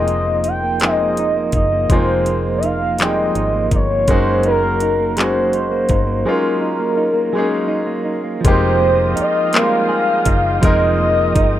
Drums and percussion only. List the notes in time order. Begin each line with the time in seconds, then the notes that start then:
0.08 closed hi-hat
0.44 closed hi-hat
0.80 clap, closed hi-hat
1.17 closed hi-hat
1.52 kick, closed hi-hat
1.90 kick, closed hi-hat
2.26 closed hi-hat
2.63 closed hi-hat
2.99 clap, closed hi-hat
3.35 closed hi-hat
3.71 kick, closed hi-hat
4.08 kick, closed hi-hat
4.43 closed hi-hat
4.80 closed hi-hat
5.17 clap, closed hi-hat
5.53 closed hi-hat
5.89 kick, closed hi-hat
8.45 kick, closed hi-hat
9.17 closed hi-hat
9.53 clap, closed hi-hat
10.25 kick, closed hi-hat
10.63 kick, closed hi-hat
11.36 kick, closed hi-hat